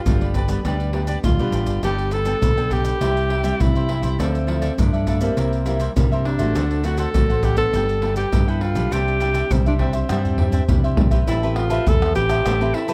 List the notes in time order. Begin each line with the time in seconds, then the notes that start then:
Already playing: F4
0.06 G1 D3 G3 B3 D4, pandeiro, maracas, surdo
0.21 G4 B4 D5, pandeiro, maracas
0.34 D4 G4 B4 D5, pandeiro, maracas, surdo
0.48 G3 B3 D4 G4 B4 D5, pandeiro, maracas
0.65 D2 G2 G3 B3 D4 G4 B4 D5, pandeiro, maracas, surdo
0.80 pandeiro, maracas
0.93 G3 B3 D4 G4 B4 D5, pandeiro
1.07 D4 G4 B4 D5, pandeiro, maracas
1.24 D2 D3 F4, pandeiro, maracas, surdo
1.39 B1 G3 B3 D4 G4 B4 D5, pandeiro, maracas
1.52 A1 D4 G4 B4 D5, pandeiro, maracas
1.66 G1 G4 B4 D5, pandeiro, maracas
1.83 G1 G3 B3 D4 G4 A4 B4 G5, pandeiro, maracas, surdo
1.98 pandeiro, maracas
2.11 D4 A4 B4 G5, pandeiro, maracas
2.25 B3 D4 A4 B4 G5, pandeiro, maracas
2.41 B1 D3, pandeiro, maracas, surdo
2.57 B3 D4 A4 B4 G5, pandeiro, maracas
2.70 D4 G4 A4 B4 G5, pandeiro, maracas, surdo
2.84 A4 B4 G5, pandeiro, maracas
3.01 C2 C3 G3 C4 E4 G4 C5 E5, pandeiro, maracas, surdo
3.17 pandeiro, maracas
3.29 E4 G4 C5 E5, pandeiro
3.43 G3 C4 E4 G4 C5 E5, pandeiro, maracas
3.60 G2 C3 E4, pandeiro, maracas, surdo
3.75 G4 C5 E5, pandeiro, maracas
3.88 G3 C4 E4 G4 C5 E5, pandeiro
4.02 C2 G4 C5 E5, pandeiro, maracas
4.18 D2 D3 F3 A3 C4 E4 F4 A4 D5 E5, pandeiro, maracas, surdo
4.35 pandeiro, maracas
4.47 F3 A3 E4 F4 A4 D5 E5, pandeiro
4.61 F4 A4 D5 E5, pandeiro, maracas
4.78 G2 A2 F3 A3 D4 E4, pandeiro, maracas, surdo
4.93 A4 D5 E5, pandeiro, maracas
5.07 F4 A4 D5 E5, pandeiro, maracas, surdo
5.21 G3 A#3 C4 E4 A4 D5 E5, pandeiro, maracas
5.37 C2 C3 E4 A#4 C5 E5, pandeiro, maracas, surdo
5.53 pandeiro, maracas
5.66 G3 A#3 E4 A#4 C5 E5, pandeiro, maracas
5.80 E4 A#4 C5 E5, pandeiro, maracas
5.96 G2 C3 G3 A#3 E4, pandeiro, maracas, surdo
6.12 A#4 C5 E5, pandeiro, maracas
6.24 D4 E4 A#4 C5 E5, pandeiro
6.38 A1 A3 C4 F#4 A#4 C5 E5, pandeiro, maracas
6.55 D2 D3 D4 A4 C5 F#5, pandeiro, maracas, surdo
6.71 pandeiro, maracas
6.84 A3 C4 D4 F#4 A4 C5 F#5, pandeiro, maracas
6.97 D4 A4 C5 F#5, pandeiro, maracas
7.14 A1 A2 A3 C4 F#4, pandeiro, maracas, surdo
7.30 A4 C5 F#5, pandeiro, maracas
7.42 D4 G4 A4 C5 F#5, pandeiro, maracas, surdo
7.56 B3 D4 A4 C5 F#5, pandeiro, maracas
7.73 G1 G3 D4 A4 B4 G5, pandeiro, maracas, surdo
7.89 pandeiro, maracas
8.02 B3 D4 A4 B4 G5, pandeiro
8.16 D4 G4 A4 B4 G5, pandeiro, maracas
8.32 G2 D3 B3 D4 A4, pandeiro, maracas, surdo
8.48 E4 A4 B4 G5, pandeiro, maracas
8.61 D4 F4 A4 B4 G5, pandeiro
8.75 B1 G3 D4 E4 A4 B4 G5, pandeiro, maracas
8.91 C2 C3 D4 G4 C5 E5, pandeiro, maracas, surdo
9.08 pandeiro, maracas
9.20 G3 D4 E4 G4 C5 E5, pandeiro, maracas
9.34 D4 G4 C5 E5, pandeiro, maracas
9.51 C2 G3 C4, pandeiro, maracas, surdo
9.66 G3 D4 E4 G4 C5 E5, pandeiro, maracas
9.78 C4 D4 G4 C5 E5, pandeiro, surdo
9.93 G4 C5 E5, pandeiro, maracas
10.09 G2 C3 G3 D4 E4 G4 C5 E5, pandeiro, tamborim, maracas, surdo
10.25 surdo, pandeiro, maracas
10.38 D4 G4 C5 E5, surdo, pandeiro
10.52 D4 G4 C5 E5, surdo, pandeiro, maracas
10.69 C3 G3 D4 E4, surdo, pandeiro, maracas
10.84 G4 C5 E5, pandeiro, maracas
10.97 D4 G4 C5 E5, pandeiro, surdo
11.11 B1 C4 G4 B4 C5 E5, pandeiro, maracas, surdo
11.27 A1 A3 E4 G4 C5 E5 A5, pandeiro, maracas, surdo
11.43 C4 G4 B4 C5 E5 A5, pandeiro, maracas
11.56 F4, muted cavaquinho stroke, pandeiro, tamborim
11.70 C4 G4 B4 C5 E5 A5, pandeiro, maracas
11.87 E2 E3 A4, pandeiro, maracas, surdo
12.02 C5 E5 A5, pandeiro, tamborim, maracas
12.15 A1 C4 G4 B4, muted cavaquinho stroke, pandeiro, maracas
12.29 C5 E5 A5, pandeiro, tamborim, maracas
12.45 A1 A3 G4 C5 E5 A5, pandeiro, tamborim, maracas, surdo
12.61 C4 G4 B4 C5 E5 A5, pandeiro, maracas
12.74 E4 G4 C5 E5 A5, pandeiro
12.88 C4 G4 B4 E5 A5, pandeiro, maracas